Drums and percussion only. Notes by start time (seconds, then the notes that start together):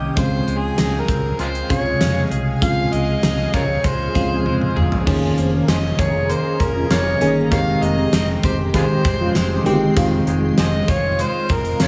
0.17 kick, closed hi-hat
0.48 closed hi-hat
0.78 snare, closed hi-hat
1.08 kick, closed hi-hat
1.39 closed hi-hat
1.55 closed hi-hat
1.70 kick, closed hi-hat
2.01 snare, closed hi-hat
2.31 closed hi-hat
2.62 kick, closed hi-hat
2.93 closed hi-hat
3.23 snare, closed hi-hat
3.54 kick, closed hi-hat
3.84 kick, closed hi-hat
4.15 kick, closed hi-hat
4.46 high tom
4.61 mid tom
4.77 mid tom
4.92 floor tom
5.07 kick, crash
5.38 closed hi-hat
5.68 snare, closed hi-hat
5.99 kick, closed hi-hat
6.30 closed hi-hat
6.60 kick, closed hi-hat
6.91 snare, closed hi-hat
7.21 closed hi-hat
7.52 kick, closed hi-hat
7.82 closed hi-hat
8.13 snare, closed hi-hat
8.43 kick, closed hi-hat
8.74 kick, closed hi-hat
9.05 kick, closed hi-hat
9.35 snare, closed hi-hat
9.66 closed hi-hat
9.96 kick, closed hi-hat
10.27 closed hi-hat
10.58 snare, closed hi-hat
10.88 kick, closed hi-hat
11.19 closed hi-hat
11.49 kick, closed hi-hat
11.65 closed hi-hat
11.80 snare, closed hi-hat